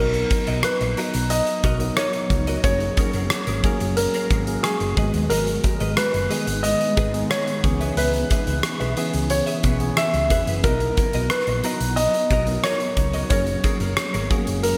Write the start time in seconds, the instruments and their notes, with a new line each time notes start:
Already playing: fingered electric bass B1, tine electric piano F#3 B3 D#4 A#4, ambient pad F#3 B3 D#4, clean electric guitar F#4, grand piano A#4
0.00 clean electric guitar A#4 D#5
0.14 muted clean electric guitar stroke, closed hi-hat
0.30 muted clean electric guitar stroke, kick, closed hi-hat
0.47 fingered electric bass B1, clean electric guitar F#4 A#4 D#5, closed hi-hat
0.63 grand piano B4, cross-stick, closed hi-hat
0.81 fingered electric bass A#1, muted clean electric guitar stroke, closed hi-hat
0.97 tine electric piano F#3 B3 D#4 A#5, clean electric guitar F#4 A#4 D#5, closed hi-hat
1.14 fingered electric bass B1, muted clean electric guitar stroke, closed hi-hat
1.30 grand piano D#5, closed hi-hat
1.47 muted clean electric guitar stroke, closed hi-hat
1.64 fingered electric bass B1, clean electric guitar F#4 A#4 D#5, kick, closed hi-hat
1.79 tine electric piano F#3 B3 D#4 A#4, muted clean electric guitar stroke, closed hi-hat
1.97 clean electric guitar F#4 A#4 D#5, grand piano C#5, cross-stick, closed hi-hat
2.13 muted clean electric guitar stroke, closed hi-hat
2.30 fingered electric bass C#2, muted clean electric guitar stroke, kick, closed hi-hat
2.47 clean electric guitar F#4 A#4 D#5, closed hi-hat
2.63 fingered electric bass F#1, tine electric piano F#3 A#3 C#4 G#4, ambient pad G#3 F#4, clean electric guitar C#4 G#4 A#4, grand piano C#5, kick, closed hi-hat
2.80 closed hi-hat
2.97 clean electric guitar C#4 G#4 A#4, kick, closed hi-hat
3.13 fingered electric bass F#1, clean electric guitar C#4 G#4 A#4, closed hi-hat
3.30 muted clean electric guitar stroke, cross-stick, closed hi-hat
3.47 fingered electric bass G#1, clean electric guitar C#4 G#4 A#4, closed hi-hat
3.63 tine electric piano F#3 A#3 C#4 G#4, clean electric guitar C#4 G#4 A#4, kick, closed hi-hat
3.80 fingered electric bass F#1, muted clean electric guitar stroke, closed hi-hat
3.97 grand piano A#4, muted clean electric guitar stroke, closed hi-hat
4.14 clean electric guitar C#4 G#4 A#4, closed hi-hat
4.30 fingered electric bass G#1, clean electric guitar C#4 G#4 A#4, kick, closed hi-hat
4.47 tine electric piano F#3 A#3 C#4 G#4, muted clean electric guitar stroke, closed hi-hat
4.63 grand piano G#4, muted clean electric guitar stroke, cross-stick, closed hi-hat
4.80 fingered electric bass F#1, muted clean electric guitar stroke, closed hi-hat
4.96 fingered electric bass G#1, tine electric piano D#3 G#3 B3 G#4, ambient pad B3 D#4, clean electric guitar G#4 B4 D#5, kick, closed hi-hat
5.14 fingered electric bass D#2, clean electric guitar G#4 B4 D#5, closed hi-hat
5.30 fingered electric bass G#1, clean electric guitar G#4 B4 D#5, grand piano A#4, closed hi-hat
5.47 muted clean electric guitar stroke, closed hi-hat
5.64 muted clean electric guitar stroke, kick, closed hi-hat
5.80 fingered electric bass G#1, clean electric guitar G#4 B4 D#5, closed hi-hat
5.97 grand piano B4, cross-stick, closed hi-hat
6.14 fingered electric bass F#1, muted clean electric guitar stroke, closed hi-hat
6.30 tine electric piano D#3 G#3 B3 G#4, clean electric guitar G#4 B4 D#5, closed hi-hat
6.47 fingered electric bass G#1, muted clean electric guitar stroke, closed hi-hat
6.63 grand piano D#5, closed hi-hat
6.81 muted clean electric guitar stroke, closed hi-hat
6.97 fingered electric bass G#1, clean electric guitar G#4 B4 D#5, kick, closed hi-hat
7.13 tine electric piano D#3 G#3 B3 G#4, muted clean electric guitar stroke, closed hi-hat
7.30 clean electric guitar G#4 B4 D#5, grand piano C#5, cross-stick, closed hi-hat
7.47 muted clean electric guitar stroke, closed hi-hat
7.63 fingered electric bass C#2, ambient pad C#3 B3 E4, tine electric piano D#3 B3 C#4 G#4, muted clean electric guitar stroke, kick, closed hi-hat
7.70 tine electric piano E3
7.80 clean electric guitar G#4 B4 E5, closed hi-hat
7.97 fingered electric bass C#2, clean electric guitar G#4 B4 E5, grand piano B4, closed hi-hat
8.14 closed hi-hat
8.30 clean electric guitar G#4 B4 E5, kick, closed hi-hat
8.47 fingered electric bass C#2, clean electric guitar G#4 B4 E5, closed hi-hat
8.63 muted clean electric guitar stroke, cross-stick, closed hi-hat
8.80 fingered electric bass B1, clean electric guitar G#4 B4 E5, closed hi-hat
8.96 tine electric piano E3 B3 C#4 G#4, clean electric guitar G#4 B4 E5, closed hi-hat
9.13 fingered electric bass C#2, muted clean electric guitar stroke, closed hi-hat
9.30 grand piano C#5, muted clean electric guitar stroke, closed hi-hat
9.46 clean electric guitar G#4 B4 E5, closed hi-hat
9.63 fingered electric bass B1, clean electric guitar G#4 B4 E5, kick, closed hi-hat
9.80 tine electric piano E3 B3 C#4 G#4, muted clean electric guitar stroke, closed hi-hat
9.96 grand piano E5, muted clean electric guitar stroke, cross-stick, closed hi-hat
10.13 fingered electric bass C#2, muted clean electric guitar stroke, closed hi-hat
10.30 fingered electric bass E1, clean electric guitar G#4 B4 E5, kick, closed hi-hat
10.47 fingered electric bass F#1, clean electric guitar G#4 B4 E5, closed hi-hat
10.63 fingered electric bass B1, tine electric piano F#3 B3 D#4 A#4, ambient pad F#3 D#4, clean electric guitar F#4 A#4 D#5, grand piano A#4, kick, closed hi-hat
10.80 muted clean electric guitar stroke, closed hi-hat
10.97 muted clean electric guitar stroke, kick, closed hi-hat
11.13 fingered electric bass B1, clean electric guitar F#4 A#4 D#5, closed hi-hat
11.30 grand piano B4, cross-stick, closed hi-hat
11.47 fingered electric bass A#1, muted clean electric guitar stroke, closed hi-hat
11.63 tine electric piano F#3 B3 D#4 A#5, clean electric guitar F#4 A#4 D#5, closed hi-hat
11.80 fingered electric bass B1, muted clean electric guitar stroke, closed hi-hat
11.96 grand piano D#5, closed hi-hat
12.14 muted clean electric guitar stroke, closed hi-hat
12.30 fingered electric bass B1, clean electric guitar F#4 A#4 D#5, kick, closed hi-hat
12.46 tine electric piano F#3 B3 D#4 A#4, muted clean electric guitar stroke, closed hi-hat
12.63 clean electric guitar F#4 A#4 D#5, grand piano C#5, cross-stick, closed hi-hat
12.80 muted clean electric guitar stroke, closed hi-hat
12.97 fingered electric bass C#2, muted clean electric guitar stroke, kick, closed hi-hat
13.13 clean electric guitar F#4 A#4 D#5, closed hi-hat
13.30 fingered electric bass F#1, tine electric piano F#3 A#3 C#4 G#4, ambient pad G#3 A#3 F#4, clean electric guitar C#4 G#4 A#4, grand piano C#5, kick, closed hi-hat
13.47 closed hi-hat
13.64 clean electric guitar C#4 G#4 A#4, kick, closed hi-hat
13.80 fingered electric bass F#1, clean electric guitar C#4 G#4 A#4, closed hi-hat
13.97 muted clean electric guitar stroke, cross-stick, closed hi-hat
14.13 fingered electric bass G#1, clean electric guitar C#4 G#4 A#4, closed hi-hat
14.30 tine electric piano F#3 A#3 C#4 F#4, clean electric guitar C#4 G#4 A#4, kick, closed hi-hat
14.38 tine electric piano G#4
14.47 fingered electric bass F#1, muted clean electric guitar stroke, closed hi-hat
14.63 grand piano A#4, muted clean electric guitar stroke, closed hi-hat